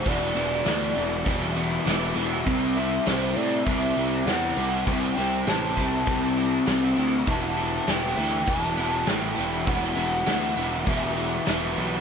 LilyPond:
<<
  \new Staff \with { instrumentName = "Soft synth lead" } { \time 4/4 \key e \minor \tempo 4 = 100 d''2.~ d''8 r8 | r8 e''8 c''8 d''8 e''4 fis''4 | g''4 a''2~ a''8 r8 | a''4 g''4 a''4 g''4 |
fis''2 e''4. r8 | }
  \new Staff \with { instrumentName = "Overdriven electric guitar" } { \time 4/4 \key e \minor <e g b e'>8 <g b e'>8 <e g b e'>8 <g b e'>8 <e g b e'>8 <g b e'>8 <e g b e'>8 <g b e'>8 | <c g c' e'>8 <g c' e'>8 <c g c' e'>8 <g c' e'>8 <c g c' e'>8 <g c' e'>8 <c g c' e'>8 <g c' e'>8 | <c g c' e'>8 <g c' e'>8 <c g c' e'>8 <g c' e'>8 <c g c' e'>8 <g c' e'>8 <c g c' e'>8 <g c' e'>8 | <e g b e'>8 <g b e'>8 <e g b e'>8 <g b e'>8 <e g b e'>8 <g b e'>8 <e g b e'>8 <g b e'>8 |
<e g b e'>8 <g b e'>8 <e g b e'>8 <g b e'>8 <e g b e'>8 <g b e'>8 <e g b e'>8 <g b e'>8 | }
  \new Staff \with { instrumentName = "Picked electric bass" } { \clef bass \time 4/4 \key e \minor e,,8 e,,8 d,8 e,,8 e,,4 e,,8 e,,8 | c,4 c,8 a,8 c,8 c,8 e,8 c,8 | c,8 c,8 a,,8 c,8 c,4 c,8 d,8 | e,,4 e,,8 d,8 e,,8 e,,8 a,,8 e,,8 |
e,,8 e,,8 d,8 e,,8 e,,4 e,,8 b,,8 | }
  \new DrumStaff \with { instrumentName = "Drums" } \drummode { \time 4/4 <cymc bd>8 cymc8 <cymc sn>8 cymc8 <cymc bd>8 cymc8 <cymc sn>8 cymc8 | <cymc bd>8 cymc8 <cymc sn>8 cymc8 <cymc bd>8 cymc8 <cymc sn>8 cymc8 | <cymc bd>8 cymc8 <cymc sn>8 <cymc bd>8 <cymc bd>8 cymc8 <cymc sn>8 cymc8 | <cymc bd>8 cymc8 <cymc sn>8 cymc8 <cymc bd>8 cymc8 <cymc sn>8 cymc8 |
<cymc bd>8 cymc8 <cymc sn>8 cymc8 <cymc bd>8 cymc8 <cymc sn>8 cymc8 | }
>>